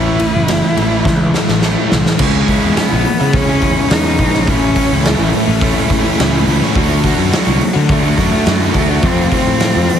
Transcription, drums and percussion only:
0.20 ride
0.48 snare, ride
0.77 ride
1.05 kick, snare
1.34 snare
1.48 snare
1.62 snare
1.92 snare
2.06 snare
2.19 kick, crash
2.48 kick, open hi-hat
2.77 snare, open hi-hat
3.05 open hi-hat
3.33 kick, open hi-hat
3.62 kick, open hi-hat
3.90 snare, open hi-hat
4.19 kick, open hi-hat
4.34 snare
4.47 kick, open hi-hat
4.76 kick, open hi-hat
5.05 snare, open hi-hat
5.33 open hi-hat
5.61 kick, open hi-hat
5.90 kick, snare, open hi-hat
6.19 snare, open hi-hat
6.48 open hi-hat
6.63 snare
6.75 kick, open hi-hat
7.04 kick, open hi-hat
7.33 snare, open hi-hat
7.61 open hi-hat
7.89 kick, open hi-hat
8.18 kick, snare, open hi-hat
8.46 snare, open hi-hat
8.74 kick, open hi-hat
9.03 kick, open hi-hat
9.32 kick, open hi-hat
9.60 snare, open hi-hat
9.89 open hi-hat

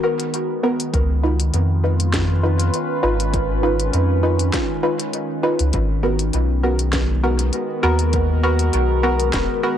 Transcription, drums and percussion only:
0.20 closed hi-hat
0.34 closed hi-hat
0.80 closed hi-hat
0.94 kick, closed hi-hat
1.40 closed hi-hat
1.54 closed hi-hat
2.00 closed hi-hat
2.14 kick, snare, closed hi-hat
2.60 closed hi-hat
2.74 closed hi-hat
3.20 closed hi-hat
3.34 kick, closed hi-hat
3.80 closed hi-hat
3.93 closed hi-hat
4.39 closed hi-hat
4.54 kick, snare, closed hi-hat
5.00 closed hi-hat
5.13 closed hi-hat
5.59 closed hi-hat
5.73 kick, closed hi-hat
6.19 closed hi-hat
6.33 closed hi-hat
6.79 closed hi-hat
6.93 kick, snare, closed hi-hat
7.39 closed hi-hat
7.53 closed hi-hat
7.99 closed hi-hat
8.13 kick, closed hi-hat
8.59 closed hi-hat
8.73 closed hi-hat
9.20 closed hi-hat
9.33 kick, snare, closed hi-hat

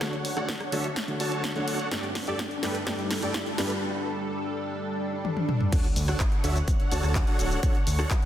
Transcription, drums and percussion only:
0.01 kick, cross-stick, snare, closed hi-hat
0.13 closed hi-hat
0.25 open hi-hat
0.37 cross-stick, closed hi-hat
0.49 kick, snare, closed hi-hat
0.61 cross-stick, closed hi-hat
0.72 open hi-hat
0.84 closed hi-hat
0.96 kick, snare, closed hi-hat
1.08 closed hi-hat
1.20 open hi-hat
1.32 closed hi-hat
1.44 kick, snare, closed hi-hat
1.56 closed hi-hat
1.68 open hi-hat
1.80 closed hi-hat
1.92 kick, snare, closed hi-hat
2.03 closed hi-hat
2.15 snare, open hi-hat
2.27 closed hi-hat
2.39 kick, snare, closed hi-hat
2.51 closed hi-hat
2.63 snare, open hi-hat
2.75 closed hi-hat
2.87 kick, snare, closed hi-hat
2.99 closed hi-hat
3.11 snare, open hi-hat
3.22 closed hi-hat
3.34 kick, snare, closed hi-hat
3.46 closed hi-hat
3.58 snare, open hi-hat
3.70 closed hi-hat
5.25 high tom
5.37 high tom
5.49 mid tom
5.61 mid tom
5.72 kick, closed hi-hat, crash, shaker
5.84 closed hi-hat
5.96 open hi-hat, shaker
6.08 cross-stick, shaker
6.20 kick, clap, closed hi-hat, shaker
6.32 closed hi-hat
6.44 open hi-hat, shaker
6.56 closed hi-hat, shaker
6.68 kick, closed hi-hat, shaker
6.80 closed hi-hat
6.92 open hi-hat, shaker
7.03 cross-stick, closed hi-hat, shaker
7.15 kick, clap, closed hi-hat, shaker
7.27 closed hi-hat
7.39 open hi-hat, shaker
7.51 closed hi-hat, shaker
7.63 kick, closed hi-hat, shaker
7.75 closed hi-hat
7.87 open hi-hat, shaker
7.99 cross-stick, shaker
8.11 kick, clap, closed hi-hat, shaker

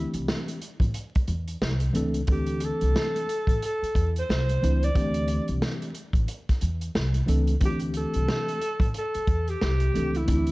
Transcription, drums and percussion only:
0.14 closed hi-hat
0.28 snare
0.48 closed hi-hat
0.62 closed hi-hat
0.80 kick, closed hi-hat
0.94 closed hi-hat
1.15 kick, closed hi-hat
1.28 closed hi-hat
1.48 closed hi-hat
1.62 snare
1.80 closed hi-hat
1.95 closed hi-hat
2.14 closed hi-hat
2.27 kick, closed hi-hat
2.46 closed hi-hat
2.60 closed hi-hat
2.81 closed hi-hat
2.96 snare
3.16 closed hi-hat
3.29 closed hi-hat
3.47 kick, closed hi-hat
3.62 closed hi-hat
3.84 closed hi-hat
3.95 kick, closed hi-hat
4.16 closed hi-hat
4.30 snare
4.49 closed hi-hat
4.64 closed hi-hat
4.83 closed hi-hat
4.95 kick, closed hi-hat
5.14 closed hi-hat
5.28 closed hi-hat
5.48 closed hi-hat
5.62 snare
5.82 closed hi-hat
5.95 closed hi-hat
6.13 kick, closed hi-hat
6.28 closed hi-hat
6.49 kick, snare, closed hi-hat
6.61 closed hi-hat
6.81 closed hi-hat
6.95 snare
7.14 closed hi-hat
7.28 closed hi-hat
7.47 closed hi-hat
7.61 kick, closed hi-hat
7.80 closed hi-hat
7.94 closed hi-hat
8.14 closed hi-hat
8.28 snare
8.48 closed hi-hat
8.61 closed hi-hat
8.80 kick, closed hi-hat
8.94 closed hi-hat
9.14 closed hi-hat
9.27 kick, closed hi-hat
9.48 closed hi-hat
9.61 snare
9.80 closed hi-hat
9.95 closed hi-hat
10.15 closed hi-hat
10.28 kick, closed hi-hat
10.47 closed hi-hat

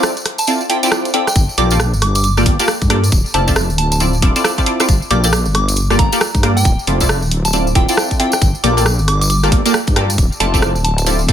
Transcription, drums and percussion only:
0.03 cross-stick, tambourine
0.17 closed hi-hat, tambourine
0.26 cross-stick, open hi-hat
0.38 closed hi-hat, tambourine
0.47 closed hi-hat, tambourine
0.61 tambourine
0.70 open hi-hat
0.83 closed hi-hat, tambourine
0.92 cross-stick, tambourine
1.05 closed hi-hat, tambourine
1.14 open hi-hat
1.27 cross-stick, closed hi-hat, tambourine
1.35 kick, closed hi-hat, tambourine
1.49 tambourine
1.58 open hi-hat
1.70 tambourine
1.80 cross-stick, tambourine
1.94 tambourine
2.02 cross-stick, open hi-hat
2.15 closed hi-hat, tambourine
2.23 closed hi-hat, tambourine
2.37 cross-stick, tambourine
2.46 kick, open hi-hat
2.59 closed hi-hat, tambourine
2.68 cross-stick, tambourine
2.82 kick, closed hi-hat, tambourine
2.90 cross-stick, open hi-hat
3.04 closed hi-hat, tambourine
3.12 kick, closed hi-hat, tambourine
3.26 tambourine
3.34 open hi-hat
3.48 kick, tambourine
3.56 cross-stick, tambourine
3.70 tambourine
3.78 open hi-hat
3.92 closed hi-hat, tambourine
4.00 closed hi-hat, tambourine
4.13 tambourine
4.22 kick, open hi-hat
4.36 closed hi-hat, tambourine
4.44 cross-stick, tambourine
4.58 kick, closed hi-hat, tambourine
4.66 open hi-hat
4.80 cross-stick, closed hi-hat, tambourine
4.88 kick, closed hi-hat, tambourine
5.02 tambourine
5.11 open hi-hat
5.24 tambourine
5.33 cross-stick, tambourine
5.45 tambourine
5.55 cross-stick, open hi-hat
5.68 closed hi-hat, tambourine
5.76 closed hi-hat, tambourine
5.90 cross-stick, tambourine
5.99 kick, open hi-hat
6.12 closed hi-hat, tambourine
6.21 cross-stick, tambourine
6.34 kick, closed hi-hat, tambourine
6.43 cross-stick, open hi-hat
6.57 closed hi-hat, tambourine
6.65 kick, closed hi-hat, tambourine
6.79 tambourine
6.87 open hi-hat
7.00 kick, tambourine
7.09 cross-stick, tambourine
7.22 tambourine
7.31 open hi-hat
7.45 closed hi-hat, tambourine
7.53 closed hi-hat, tambourine
7.67 tambourine
7.75 kick, open hi-hat
7.88 closed hi-hat, tambourine
7.97 cross-stick, tambourine
8.11 kick, closed hi-hat, tambourine
8.20 open hi-hat
8.32 cross-stick, closed hi-hat, tambourine
8.41 kick, closed hi-hat, tambourine
8.55 tambourine
8.64 open hi-hat
8.78 tambourine
8.86 cross-stick, tambourine
8.99 tambourine
9.08 cross-stick, open hi-hat
9.21 closed hi-hat, tambourine
9.30 closed hi-hat, tambourine
9.43 cross-stick, tambourine
9.52 kick, open hi-hat
9.66 closed hi-hat, tambourine
9.74 cross-stick, tambourine
9.87 kick, closed hi-hat, tambourine
9.96 cross-stick, open hi-hat
10.10 closed hi-hat, tambourine
10.18 kick, closed hi-hat, tambourine
10.32 tambourine
10.40 open hi-hat
10.54 kick, tambourine
10.62 cross-stick, tambourine
10.75 tambourine
10.85 open hi-hat
10.98 closed hi-hat, tambourine
11.06 closed hi-hat, tambourine
11.19 tambourine
11.28 kick, open hi-hat

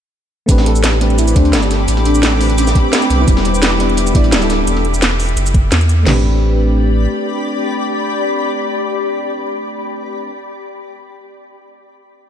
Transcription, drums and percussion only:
0.49 kick, closed hi-hat, shaker
0.58 snare
0.66 closed hi-hat
0.76 shaker
0.84 snare, closed hi-hat, shaker
0.93 snare
1.01 snare, closed hi-hat
1.10 closed hi-hat
1.18 closed hi-hat, shaker
1.28 closed hi-hat, shaker
1.36 kick, closed hi-hat
1.45 closed hi-hat
1.53 snare, closed hi-hat, shaker
1.62 snare, shaker
1.71 snare, closed hi-hat, shaker
1.88 closed hi-hat, shaker
1.97 snare
2.05 closed hi-hat
2.15 closed hi-hat, shaker
2.23 snare, closed hi-hat, shaker
2.32 snare
2.41 closed hi-hat, open hi-hat, shaker
2.50 closed hi-hat
2.58 closed hi-hat, shaker
2.67 snare, closed hi-hat, shaker
2.75 kick, closed hi-hat
2.93 snare, closed hi-hat, shaker
3.02 closed hi-hat, shaker
3.10 closed hi-hat, shaker
3.28 kick, closed hi-hat, shaker
3.37 snare
3.45 closed hi-hat
3.55 shaker
3.62 snare, closed hi-hat, shaker
3.72 snare
3.80 snare, closed hi-hat
3.89 closed hi-hat
3.97 closed hi-hat, shaker
4.07 closed hi-hat, shaker
4.15 kick, closed hi-hat
4.24 closed hi-hat
4.32 snare, closed hi-hat, shaker
4.42 snare, shaker
4.50 snare, closed hi-hat, shaker
4.67 closed hi-hat, shaker
4.77 snare
4.85 closed hi-hat
4.94 closed hi-hat, shaker
5.02 snare, closed hi-hat, shaker
5.11 snare
5.20 open hi-hat, shaker
5.29 closed hi-hat
5.37 closed hi-hat, shaker
5.46 closed hi-hat, shaker
5.54 kick, closed hi-hat
5.72 snare, closed hi-hat, shaker
5.81 closed hi-hat, shaker
5.89 closed hi-hat, shaker
6.07 snare, floor tom, crash

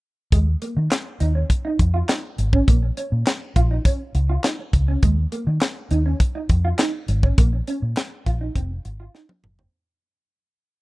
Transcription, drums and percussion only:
0.32 kick, closed hi-hat
0.62 closed hi-hat
0.91 snare, clap, closed hi-hat
1.20 closed hi-hat
1.50 kick, closed hi-hat
1.79 kick, closed hi-hat
2.09 snare, clap, closed hi-hat
2.38 closed hi-hat
2.53 kick
2.68 kick, closed hi-hat
2.97 closed hi-hat
3.27 snare, clap, closed hi-hat
3.56 kick, closed hi-hat
3.85 kick, closed hi-hat
4.15 closed hi-hat
4.44 snare, clap, closed hi-hat
4.73 kick, closed hi-hat
5.03 kick, closed hi-hat
5.32 closed hi-hat
5.61 snare, clap, closed hi-hat
5.91 closed hi-hat
6.20 kick, closed hi-hat
6.49 kick, closed hi-hat
6.79 snare, clap, closed hi-hat
7.08 closed hi-hat
7.23 kick
7.38 kick, closed hi-hat
7.67 closed hi-hat
7.97 snare, clap, closed hi-hat
8.26 kick, closed hi-hat
8.55 kick, closed hi-hat
8.85 closed hi-hat
9.15 snare
9.29 high tom
9.44 mid tom
9.59 floor tom

